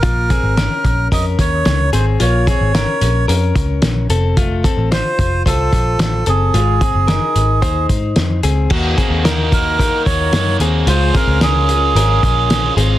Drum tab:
CC |--------|--------|--------|--------|
HH |xxxxxxxx|xxxxxxxx|xxxxxxxx|xxxxxxxx|
SD |--o---o-|--o---o-|--o---o-|--o---o-|
BD |oo-ooo--|-o---o--|oo-ooo--|-o--oo--|

CC |x-------|--------|
HH |-xxxxxxx|xxxxxxxx|
SD |-oo---o-|-oo---o-|
BD |oo-ooo--|-o---o--|